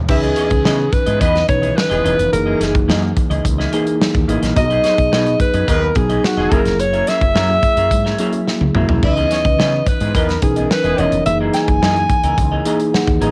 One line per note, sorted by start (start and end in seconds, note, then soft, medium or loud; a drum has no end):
0.08 0.31 C#2 loud
0.08 1.14 E3 medium
0.08 1.14 C#4 medium
0.08 1.14 D#4 medium
0.08 0.20 E4 loud
0.08 0.94 G#4 medium
0.08 1.14 B4 medium
0.08 0.20 E5 loud
0.08 muted clean electric guitar stroke soft
0.08 kick loud
0.08 crash medium
0.22 0.35 B3 medium
0.22 0.36 E4 medium
0.22 0.36 G#4 medium
0.22 0.37 D#5 medium
0.22 closed hi-hat soft
0.36 0.53 B3 medium
0.36 0.48 C#4 medium
0.36 0.51 E4 medium
0.36 0.50 G#4 medium
0.36 0.48 C#5 medium
0.36 0.50 D#5 medium
0.36 closed hi-hat medium
0.50 0.62 C#2 loud
0.50 muted clean electric guitar stroke soft
0.50 kick medium
0.50 closed hi-hat soft
0.64 0.87 C#3 loud
0.64 0.85 B3 medium
0.64 0.78 E4 medium
0.64 0.78 G#4 medium
0.64 0.77 D#5 medium
0.64 snare loud
0.78 muted clean electric guitar stroke soft
0.92 1.22 B4 medium
0.92 muted clean electric guitar stroke soft
0.92 kick medium
0.92 closed hi-hat medium
1.06 1.18 G#2 medium
1.06 1.20 B3 soft
1.06 1.20 E4 medium
1.06 1.21 G#4 medium
1.06 1.21 D#5 medium
1.06 closed hi-hat medium
1.21 1.43 E2 medium
1.21 1.41 B3 medium
1.21 1.43 B3 medium
1.21 1.35 E4 medium
1.21 1.34 G#4 medium
1.21 1.43 B4 loud
1.21 1.49 D#5 loud
1.21 1.34 D#5 medium
1.21 kick medium
1.21 closed hi-hat loud
1.35 muted clean electric guitar stroke soft
1.35 snare soft
1.35 closed hi-hat soft
1.48 1.71 B1 medium
1.48 1.55 D#3 medium
1.48 2.01 C#4 medium
1.48 2.02 D#4 medium
1.48 2.02 B4 medium
1.48 1.78 C#5 medium
1.48 muted clean electric guitar stroke soft
1.48 kick loud
1.48 closed hi-hat medium
1.55 2.04 E3 medium
1.62 1.75 B3 soft
1.62 1.75 E4 medium
1.62 1.76 G#4 medium
1.62 1.76 D#5 medium
1.62 closed hi-hat soft
1.76 2.32 B4 loud
1.76 muted clean electric guitar stroke soft
1.76 snare loud
1.90 2.02 E1 medium
1.90 2.13 G#3 medium
1.90 2.03 B3 medium
1.90 2.03 E4 medium
1.90 2.04 G#4 medium
1.90 2.13 G#4 medium
1.90 2.04 D#5 medium
1.90 closed hi-hat soft
2.04 2.16 E1 medium
2.04 2.31 E3 medium
2.04 2.25 B3 medium
2.04 2.31 C#4 medium
2.04 2.31 D#4 medium
2.04 2.18 E4 medium
2.04 2.17 G#4 medium
2.04 2.31 B4 medium
2.04 2.17 D#5 loud
2.04 closed hi-hat medium
2.18 2.30 F1 medium
2.18 muted clean electric guitar stroke soft
2.18 closed hi-hat medium
2.32 2.55 F#1 loud
2.32 3.38 E3 medium
2.32 3.38 A#3 medium
2.32 3.38 D#4 medium
2.32 3.38 G#4 medium
2.32 2.85 A#4 medium
2.32 muted clean electric guitar stroke soft
2.32 closed hi-hat medium
2.46 2.59 A#3 medium
2.46 2.59 E4 medium
2.46 2.60 G#4 medium
2.46 2.60 D#5 medium
2.60 2.90 F#1 medium
2.60 2.76 A#3 medium
2.60 2.74 E4 medium
2.60 2.74 G#4 medium
2.60 2.73 D#5 medium
2.60 snare soft
2.60 closed hi-hat medium
2.74 muted clean electric guitar stroke soft
2.74 kick medium
2.74 closed hi-hat soft
2.88 3.11 F#2 loud
2.88 3.09 A#3 medium
2.88 3.02 E4 medium
2.88 3.01 G#4 medium
2.88 3.01 D#5 medium
2.88 snare loud
3.02 muted clean electric guitar stroke soft
3.16 muted clean electric guitar stroke soft
3.16 kick medium
3.16 closed hi-hat medium
3.30 3.42 C#2 medium
3.30 3.43 A#3 medium
3.30 3.44 E4 medium
3.30 3.44 G#4 medium
3.30 3.44 D#5 medium
3.30 closed hi-hat medium
3.44 3.67 C#2 medium
3.44 muted clean electric guitar stroke soft
3.44 kick medium
3.44 closed hi-hat loud
3.58 3.71 A#3 medium
3.58 3.71 E4 medium
3.58 3.72 G#4 medium
3.58 3.72 D#5 medium
3.58 snare soft
3.72 4.25 E3 medium
3.72 3.93 A#3 medium
3.72 4.25 A#3 medium
3.72 4.25 D#4 medium
3.72 3.86 E4 medium
3.72 3.85 G#4 medium
3.72 4.26 G#4 loud
3.72 3.85 D#5 medium
3.72 closed hi-hat medium
3.86 muted clean electric guitar stroke soft
3.86 closed hi-hat soft
4.00 muted clean electric guitar stroke soft
4.00 snare loud
4.14 4.26 D#2 medium
4.14 muted clean electric guitar stroke soft
4.14 kick medium
4.14 closed hi-hat soft
4.28 4.39 A1 medium
4.28 4.54 E3 medium
4.28 4.42 A#3 medium
4.28 4.55 A#3 medium
4.28 4.55 D#4 medium
4.28 4.42 E4 medium
4.28 4.41 G#4 medium
4.28 4.55 G#4 loud
4.28 4.41 D#5 medium
4.28 closed hi-hat medium
4.42 4.53 A#1 medium
4.42 4.56 A#3 medium
4.42 4.56 E4 soft
4.42 4.55 G#4 medium
4.42 4.56 D#5 medium
4.42 snare soft
4.42 closed hi-hat medium
4.56 4.79 B1 loud
4.56 5.61 F#3 medium
4.56 5.61 B3 medium
4.56 4.67 D#4 loud
4.56 5.62 D#4 medium
4.56 4.63 F#4 medium
4.56 4.67 D#5 loud
4.56 5.37 D#5 loud
4.56 muted clean electric guitar stroke soft
4.56 kick loud
4.56 closed hi-hat medium
4.64 5.65 G#4 medium
4.70 4.83 D#4 medium
4.70 4.83 G#4 medium
4.70 4.84 B4 medium
4.70 4.84 D#5 medium
4.70 closed hi-hat soft
4.84 4.95 C#4 medium
4.84 5.00 D#4 medium
4.84 4.98 G#4 medium
4.84 4.98 B4 medium
4.84 4.95 C#5 medium
4.84 4.97 D#5 medium
4.84 snare soft
4.84 closed hi-hat medium
4.98 5.09 B1 loud
4.98 muted clean electric guitar stroke soft
4.98 kick medium
4.98 closed hi-hat soft
5.12 5.34 B2 loud
5.12 5.33 D#4 medium
5.12 5.26 G#4 medium
5.12 5.26 B4 medium
5.12 5.25 D#5 loud
5.12 snare loud
5.26 muted clean electric guitar stroke soft
5.26 closed hi-hat soft
5.40 5.70 B4 medium
5.40 muted clean electric guitar stroke soft
5.40 kick medium
5.40 closed hi-hat medium
5.54 5.65 F#2 medium
5.54 5.67 D#4 soft
5.54 5.67 G#4 medium
5.54 5.68 B4 medium
5.54 5.68 D#5 medium
5.54 closed hi-hat medium
5.68 5.90 D#2 medium
5.68 5.90 B3 medium
5.68 5.88 D#4 medium
5.68 5.82 G#4 medium
5.68 5.98 A#4 medium
5.68 5.90 B4 loud
5.68 5.81 B4 medium
5.68 5.81 D#5 medium
5.68 kick medium
5.68 closed hi-hat loud
5.82 muted clean electric guitar stroke medium
5.95 6.18 B1 loud
5.95 6.48 F#3 medium
5.95 6.48 B3 medium
5.95 6.49 D#4 medium
5.95 6.26 G#4 medium
5.95 6.49 G#4 medium
5.95 muted clean electric guitar stroke soft
5.95 kick loud
5.95 closed hi-hat medium
6.09 6.22 D#4 medium
6.09 6.23 G#4 medium
6.09 6.23 B4 medium
6.09 6.23 D#5 medium
6.09 closed hi-hat soft
6.24 6.54 F#4 medium
6.24 muted clean electric guitar stroke soft
6.24 snare loud
6.37 6.49 E1 medium
6.37 6.60 G#3 medium
6.37 6.51 D#4 soft
6.37 6.60 G#4 loud
6.37 6.51 G#4 soft
6.37 6.52 B4 medium
6.37 6.53 D#5 medium
6.51 6.63 F#1 medium
6.51 7.56 F#3 medium
6.51 7.56 A#3 medium
6.51 6.72 C#4 medium
6.51 7.57 E4 medium
6.51 6.66 G#4 medium
6.51 7.57 G#4 medium
6.51 6.82 A#4 loud
6.51 6.65 A#4 medium
6.51 6.64 E5 medium
6.51 kick loud
6.51 closed hi-hat medium
6.65 6.79 F1 medium
6.65 muted clean electric guitar stroke soft
6.65 snare soft
6.65 closed hi-hat medium
6.79 7.02 F#1 loud
6.79 7.10 C#5 loud
6.79 muted clean electric guitar stroke soft
6.79 closed hi-hat medium
6.93 7.06 C#4 medium
6.93 7.07 G#4 medium
6.93 7.07 A#4 medium
6.93 7.08 E5 medium
6.93 closed hi-hat soft
7.07 7.23 C#4 medium
7.07 7.21 G#4 medium
7.07 7.21 A#4 medium
7.07 8.76 E5 loud
7.07 7.20 E5 medium
7.07 snare soft
7.07 closed hi-hat medium
7.21 7.33 F#1 medium
7.21 muted clean electric guitar stroke soft
7.21 kick medium
7.21 closed hi-hat soft
7.35 7.57 F#2 loud
7.35 7.56 C#4 medium
7.35 7.50 G#4 medium
7.35 7.49 A#4 medium
7.35 7.48 E5 medium
7.35 snare loud
7.50 muted clean electric guitar stroke medium
7.63 muted clean electric guitar stroke soft
7.63 kick medium
7.63 closed hi-hat medium
7.77 7.88 F#2 medium
7.77 7.90 C#4 medium
7.77 7.90 G#4 medium
7.77 7.91 A#4 medium
7.77 7.91 E5 medium
7.77 closed hi-hat medium
7.91 8.13 G#2 medium
7.91 muted clean electric guitar stroke soft
7.91 kick medium
7.91 closed hi-hat loud
8.05 8.18 C#4 medium
8.05 8.18 G#4 medium
8.05 8.19 A#4 medium
8.05 8.19 E5 medium
8.05 snare soft
8.18 8.71 F#3 medium
8.18 8.72 A#3 medium
8.18 8.40 C#4 medium
8.18 8.72 E4 medium
8.18 8.33 G#4 medium
8.18 8.72 G#4 medium
8.18 8.33 A#4 medium
8.18 8.32 E5 medium
8.18 closed hi-hat medium
8.33 muted clean electric guitar stroke soft
8.33 closed hi-hat soft
8.47 muted clean electric guitar stroke soft
8.47 snare medium
8.61 8.72 C#2 medium
8.61 muted clean electric guitar stroke soft
8.61 high tom medium
8.74 8.86 B1 medium
8.74 9.01 F#3 medium
8.74 9.01 A#3 medium
8.74 8.89 C#4 medium
8.74 9.01 E4 medium
8.74 9.02 F#4 medium
8.74 8.89 G#4 medium
8.74 8.88 A#4 medium
8.74 8.87 E5 medium
8.74 mid tom medium
8.88 9.00 C2 medium
8.88 9.03 C#4 soft
8.88 9.03 G#4 medium
8.88 9.04 A#4 medium
8.88 9.04 E5 medium
8.88 floor tom medium
9.03 9.25 C#2 loud
9.03 10.08 E3 medium
9.03 10.08 C#4 medium
9.03 10.08 D#4 medium
9.03 9.14 E4 medium
9.03 10.08 B4 medium
9.03 9.90 D#5 loud
9.03 9.14 E5 loud
9.03 muted clean electric guitar stroke soft
9.03 kick loud
9.03 splash medium
9.16 9.29 B3 medium
9.16 9.30 E4 medium
9.16 9.30 G#4 medium
9.16 9.31 D#5 medium
9.16 closed hi-hat soft
9.30 9.47 B3 medium
9.30 9.39 C#4 medium
9.30 9.45 E4 medium
9.30 9.44 G#4 medium
9.30 9.39 C#5 medium
9.30 9.43 D#5 medium
9.30 snare soft
9.30 closed hi-hat medium
9.45 9.56 C#2 medium
9.45 muted clean electric guitar stroke soft
9.45 kick medium
9.45 closed hi-hat soft
9.58 9.81 C#3 loud
9.58 9.79 B3 medium
9.58 9.72 E4 medium
9.58 9.72 G#4 loud
9.58 9.71 D#5 loud
9.58 snare loud
9.72 muted clean electric guitar stroke soft
9.86 10.17 B4 medium
9.86 muted clean electric guitar stroke soft
9.86 kick medium
9.86 closed hi-hat medium
10.00 10.12 G#2 medium
10.00 10.13 B3 soft
10.00 10.14 E4 soft
10.00 10.15 G#4 medium
10.00 10.15 D#5 medium
10.00 closed hi-hat medium
10.15 10.37 E2 medium
10.15 10.35 B3 medium
10.15 10.37 B3 medium
10.15 10.29 E4 medium
10.15 10.28 G#4 medium
10.15 10.42 A#4 medium
10.15 10.37 B4 loud
10.15 10.28 D#5 loud
10.15 kick medium
10.15 closed hi-hat medium
10.29 muted clean electric guitar stroke soft
10.29 snare soft
10.29 closed hi-hat soft
10.42 10.65 B1 medium
10.42 10.95 E3 medium
10.42 10.95 C#4 medium
10.42 10.95 D#4 medium
10.42 10.72 G#4 medium
10.42 10.95 A#4 medium
10.42 muted clean electric guitar stroke soft
10.42 kick loud
10.42 closed hi-hat medium
10.56 10.69 B3 soft
10.56 10.70 E4 soft
10.56 10.70 G#4 medium
10.56 10.70 D#5 medium
10.56 closed hi-hat soft
10.70 11.00 B4 loud
10.70 muted clean electric guitar stroke soft
10.70 snare loud
10.84 10.95 E1 medium
10.84 11.07 G#3 medium
10.84 10.97 B3 medium
10.84 10.97 E4 medium
10.84 11.07 G#4 medium
10.84 10.98 G#4 medium
10.84 10.99 D#5 medium
10.84 closed hi-hat soft
10.97 11.09 E1 medium
10.97 11.24 E3 medium
10.97 11.19 B3 medium
10.97 11.24 C#4 medium
10.97 11.25 D#4 medium
10.97 11.12 E4 medium
10.97 11.12 G#4 medium
10.97 11.25 C#5 medium
10.97 11.26 D#5 loud
10.97 11.11 D#5 medium
10.97 closed hi-hat medium
11.12 11.23 F1 medium
11.12 muted clean electric guitar stroke medium
11.12 closed hi-hat medium
11.25 11.48 F#1 loud
11.25 12.31 E3 medium
11.25 12.31 A#3 medium
11.25 12.31 D#4 medium
11.25 12.31 G#4 medium
11.25 11.39 E5 loud
11.25 muted clean electric guitar stroke medium
11.25 closed hi-hat medium
11.40 11.53 E4 medium
11.40 11.53 G#4 medium
11.40 11.54 A#4 medium
11.40 11.54 D#5 medium
11.54 11.70 E4 medium
11.54 11.68 G#4 medium
11.54 11.68 A#4 medium
11.54 11.67 D#5 medium
11.54 13.18 G#5 loud
11.54 snare soft
11.54 closed hi-hat medium
11.68 11.79 F#1 medium
11.68 muted clean electric guitar stroke soft
11.68 kick medium
11.68 closed hi-hat soft
11.82 12.04 F#2 loud
11.82 12.02 E4 medium
11.82 11.96 G#4 medium
11.82 11.95 A#4 medium
11.82 11.95 D#5 loud
11.82 snare loud
11.96 muted clean electric guitar stroke medium
11.96 closed hi-hat soft
12.10 muted clean electric guitar stroke soft
12.10 kick medium
12.10 closed hi-hat medium
12.23 12.35 C#2 medium
12.23 12.36 E4 medium
12.23 12.37 G#4 medium
12.23 12.37 A#4 medium
12.23 12.38 D#5 medium
12.23 closed hi-hat medium
12.37 12.60 C#2 medium
12.37 muted clean electric guitar stroke soft
12.37 kick medium
12.37 closed hi-hat loud
12.51 12.64 E4 soft
12.51 12.65 G#4 medium
12.51 12.65 A#4 medium
12.51 12.66 D#5 medium
12.65 13.18 E3 medium
12.65 13.18 A#3 medium
12.65 13.18 D#4 medium
12.65 12.86 E4 medium
12.65 13.18 G#4 medium
12.65 12.79 G#4 medium
12.65 12.79 A#4 medium
12.65 12.78 D#5 medium
12.65 closed hi-hat medium
12.79 muted clean electric guitar stroke soft
12.79 closed hi-hat soft
12.93 13.20 F#5 medium
12.93 muted clean electric guitar stroke soft
12.93 snare loud
13.07 13.19 D#2 medium
13.07 muted clean electric guitar stroke soft
13.07 kick medium
13.07 closed hi-hat soft
13.21 13.31 A1 medium
13.21 13.31 E3 medium
13.21 13.31 A#3 medium
13.21 13.31 D#4 medium
13.21 13.31 E4 medium
13.21 13.31 G#4 medium
13.21 13.31 G#4 loud
13.21 13.31 A#4 medium
13.21 13.31 D#5 medium
13.21 13.31 A#5 medium
13.21 closed hi-hat medium